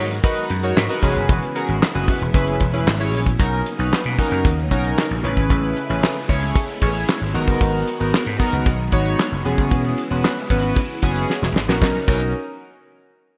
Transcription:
Already playing: G#2 D#3 F#3 G#3 B3 F#4
0.11 closed hi-hat
0.23 D#4 F#4 A#4 B4, kick, closed hi-hat
0.37 closed hi-hat
0.50 F#2, closed hi-hat
0.63 D#4 F#4 A#4 C#5, closed hi-hat
0.76 G#2, snare, clap
0.89 D#4 F#4 A#4 B4, closed hi-hat
1.02 E1 C#3 E3 B3 C#4 E4 F#4 G#4 B4, kick, open hi-hat
1.16 F#1, closed hi-hat
1.29 E1, kick, closed hi-hat
1.43 closed hi-hat
1.55 C#4 F#4 G#4 A#4, closed hi-hat
1.68 G#1, closed hi-hat
1.83 snare, clap
1.94 F#1 C#4 F#4 G#4 B4, closed hi-hat
2.08 kick, open hi-hat
2.21 E1, closed hi-hat
2.34 F#1 E3 F#3 C#4 E4 G#4 B4, kick, closed hi-hat
2.47 closed hi-hat
2.60 E1, kick, closed hi-hat
2.73 C#4 E4 G#4 B4, closed hi-hat
2.87 G#1, snare, clap
3.00 C#4 E4 G#4 C#5, closed hi-hat
3.13 A#1, open hi-hat
3.26 kick, closed hi-hat
3.39 B1 C#3 F#3 A#3 B3 C#4 D#4 F#4 A#4, kick, closed hi-hat
3.53 closed hi-hat
3.66 closed hi-hat
3.79 B1 C#4 D#4 F#4 B4, closed hi-hat
3.93 snare, clap
4.05 B2
4.18 C#4 D#4 F#4 A#4, kick, open hi-hat
4.32 F#2, closed hi-hat
4.45 D#2, kick, closed hi-hat
4.58 closed hi-hat
4.71 B1 C#4 D#4 F#4 A#4, kick, closed hi-hat
4.84 closed hi-hat
4.98 snare, clap
5.10 A#1, closed hi-hat
5.23 A1 G#3 A3 C#4 E4 G#4 B4, closed hi-hat
5.37 G#1, kick, closed hi-hat
5.50 A1, kick, closed hi-hat
5.64 closed hi-hat
5.77 closed hi-hat
5.89 A1 C#4 E4 G#4 B4, closed hi-hat
6.04 snare, clap
6.29 C#2 C#4 E4 G#4 C#5, kick, open hi-hat
6.42 closed hi-hat
6.55 kick, closed hi-hat
6.69 closed hi-hat
6.82 A1 C#4 E4 G#4 C#5, kick, closed hi-hat
6.95 closed hi-hat
7.09 snare, clap
7.21 G#1
7.34 G#1 D#3 F#3 B3 D#4 F#4 A#4, closed hi-hat
7.48 F#1, kick, closed hi-hat
7.61 G#1, kick, closed hi-hat
7.88 closed hi-hat
8.00 G#1 B3 D#4 F#4 A#4, closed hi-hat
8.14 snare, clap
8.26 G#2
8.39 B3 D#4 F#4 A#4, kick, open hi-hat
8.53 C#2, closed hi-hat
8.66 B1, kick, closed hi-hat
8.92 G#1 B3 D#4 F#4 C#5, kick, closed hi-hat
9.05 closed hi-hat
9.20 snare, clap
9.32 F#1
9.45 E1 C#3 E3 B3 C#4 E4 F#4 G#4, closed hi-hat
9.58 F#1, kick, closed hi-hat
9.71 E1, kick, closed hi-hat
9.85 closed hi-hat
9.98 closed hi-hat
10.11 E1 B3 C#4 F#4 B4, closed hi-hat
10.25 snare, clap
10.37 closed hi-hat
10.50 G#1 B3 C#4 F#4 B4, kick, open hi-hat
10.63 closed hi-hat
10.76 kick, closed hi-hat
10.90 closed hi-hat
11.02 F#1 B3 C#4 F#4 G#4, kick, closed hi-hat
11.16 closed hi-hat
11.30 snare
11.42 E1, snare
11.55 G#1, snare
11.68 A#1 B3 C#4 F#4 A#4, snare
11.82 B1 C#3 F#3 A#3 B3 C#4 D#4 F#4 A#4, kick, snare
12.08 B1 C#4 D#4 F#4 A#4, kick, crash

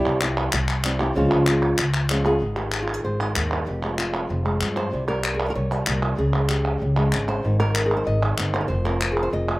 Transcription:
Already playing: C3 G3 C4 E4 G4
0.06 C2
0.21 C4 E4 G4, clap
0.37 clap
0.52 C2, muted nylon-string guitar stroke, clap
0.68 clap
0.84 G3 C4 E4 G4, clap
1.00 C4 E4 G4, clap
1.15 C#2 C#3 F3 G#3 C#4 F4
1.33 C#2
1.47 G#3 C#4 F4, clap
1.78 C#2, muted nylon-string guitar stroke, clap
1.94 clap
2.09 F3 G#3 C#4 F4, clap
2.25 G#3 C#4 F4 G#4, clap
2.41 G#1 G#2
2.56 D#3 G4
2.72 clap
2.82 F4
2.88 clap
2.94 G#4
3.04 G#1 C5
3.20 D#3 A#4
3.36 D#2 G#2 G#4, clap
3.51 G2
3.67 F1 F2 G4
3.83 G#3
3.98 F4, clap
4.14 C4, clap
4.30 F1 C4
4.45 G#3, clap
4.61 G2 C4, clap
4.76 C5, clap
4.92 C2 C3 G3 E4
5.08 G3 A#4, clap
5.24 clap
5.34 G#4
5.40 clap
5.45 G#4 A#4
5.50 A#4
5.55 C2 C#5
5.71 G3 C5
5.86 C2 A#2 A#4, clap
6.03 C3
6.18 C#2 C#3 G#4
6.34 G#3
6.49 G4, clap
6.65 clap
6.82 C#2 C#4
6.97 G#3
7.12 G#1 C#4, clap
7.28 C5
7.44 G#1 G#2 D#3 C4 D#4
7.60 D#3 A#4
7.75 C4, clap
7.86 G#4
7.91 D#4, clap
7.97 C5
8.07 G#1 D#5
8.23 D#3
8.38 G1 C4, clap
8.54 C5, clap
8.61 A#4
8.68 F1 F2 C5
8.85 C4 A#4
9.01 F4, clap
9.12 G#4
9.17 F4, clap
9.23 C5
9.33 F1 D#5
9.49 C4

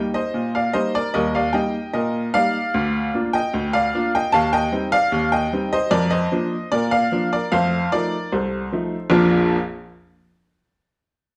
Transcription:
Already playing: G3 A#3 D#4 D#5
0.14 C5 D#5
0.34 A#2
0.55 D5 F5
0.73 G3 A#3 D#4 C5 D#5
0.95 A#4 D5
1.14 D#2 G3 A#4 D#5
1.35 D5 F5
1.53 G3 A#3 D#4 D#5 G5
1.93 A#2 A#4 D#5
2.34 G3 A#3 D#4 D5 F5
2.74 D2
3.14 A#3 D4 F4
3.33 D#5 G5
3.54 D2
3.73 D5 F5
3.94 A#3 D4 F4
4.15 D#5 G5
4.32 D#2 F5 A5
4.53 D#5 G5
4.72 G3 C4 D#4
4.92 D5 F5
5.12 D#2
5.32 D#5 G5
5.53 G3 C4 D#4
5.73 C5 D#5
5.91 F2 A#4 D5
6.11 C5 D#5
6.32 F3 A#3 D4
6.72 A#2 A#4 D5
6.91 D5 F5
7.12 F3 A#3 D4
7.33 A#4 D5
7.52 F2 A3 C5 F5
7.92 F3 A3 D#4 A#4 D5
8.32 C2 A4 C5
8.72 F3 A3 D#4
9.10 A#1 F2 F3 A#3 D4 F4 A#4

